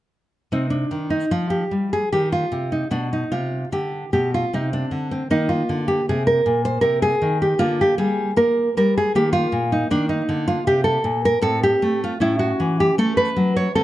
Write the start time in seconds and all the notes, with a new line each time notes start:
0.52 C3 C4 D#4
0.70 D4
0.91 D#3
1.10 D#4
1.31 F3 F4
1.50 G4
1.71 G3
1.93 G#4
2.12 D#3 G4
2.32 F4
2.52 C3
2.72 D#4
2.91 B2 D4
3.13 D#4
3.32 C3 F4
3.72 D3 G4
4.13 B2 G4
4.34 F4
4.53 C3 C4 D#4
4.73 D4
4.91 D3
5.11 C4
5.30 D#3 A#3 D#4
5.49 F4
5.69 D3
5.88 G4
6.09 C3 G#4
6.27 A#4
6.46 A#2
6.65 C5
6.81 C3 A#4
7.02 G#4
7.22 D#3
7.42 G4
7.59 D3 A#3 F4
7.81 G4
7.98 G3 G#4
8.36 A#3 A#4
8.77 G3 A#4
8.98 G#4
9.15 D#3 A#3 G4
9.33 F4
9.52 A#2
9.72 D#4
9.91 D#3 A#3 D4
10.09 D#4
10.29 D3
10.48 F4
10.67 C3 G4
10.84 A4
11.04 A#2
11.25 A#4
11.42 A2 C4 A4
11.63 G4
11.82 A3
12.04 F4
12.20 A2 C#4 E4
12.39 F#4
12.60 E3
12.80 G4
12.98 A3 A4
13.17 B4
13.36 F#3
13.56 C#5
13.75 D3 C4 A4